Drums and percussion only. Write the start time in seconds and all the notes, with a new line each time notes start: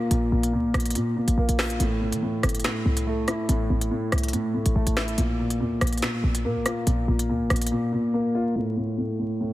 0.11 closed hi-hat
0.43 closed hi-hat
0.74 cross-stick, closed hi-hat
0.80 closed hi-hat
0.86 closed hi-hat
0.90 closed hi-hat
0.95 closed hi-hat
1.28 closed hi-hat
1.49 closed hi-hat
1.59 finger snap, cross-stick, snare, open hi-hat
1.70 closed hi-hat
1.80 closed hi-hat
2.12 closed hi-hat
2.43 cross-stick, closed hi-hat
2.49 closed hi-hat
2.55 closed hi-hat
2.60 closed hi-hat
2.64 finger snap, snare, closed hi-hat
2.97 closed hi-hat
3.28 cross-stick, closed hi-hat
3.49 closed hi-hat
3.81 closed hi-hat
4.12 cross-stick, closed hi-hat
4.18 closed hi-hat
4.23 closed hi-hat
4.28 closed hi-hat
4.33 closed hi-hat
4.66 closed hi-hat
4.87 closed hi-hat
4.97 finger snap, cross-stick, snare, closed hi-hat, open hi-hat
5.08 closed hi-hat
5.18 closed hi-hat
5.50 closed hi-hat
5.81 cross-stick, closed hi-hat
5.87 closed hi-hat
5.93 closed hi-hat
5.97 closed hi-hat
6.02 finger snap, snare, closed hi-hat
6.35 closed hi-hat
6.66 cross-stick, closed hi-hat
6.87 closed hi-hat
7.19 closed hi-hat
7.50 cross-stick, closed hi-hat
7.56 closed hi-hat
7.61 closed hi-hat
7.66 closed hi-hat